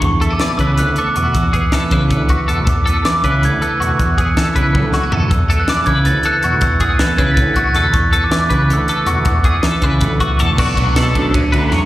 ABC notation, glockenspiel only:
X:1
M:7/8
L:1/16
Q:1/4=159
K:Emix
V:1 name="Glockenspiel"
c'3 d'3 e'2 f'2 d'4 | e'8 z6 | d'3 e'3 f'2 g'2 e'4 | f'8 z6 |
e'3 f'3 g'2 a'2 f'4 | e'3 f'3 g'3/2 b'/2 a'2 f'4 | c'3 d'3 d'2 e'4 e'2 | d'8- d'2 z4 |
z12 z2 |]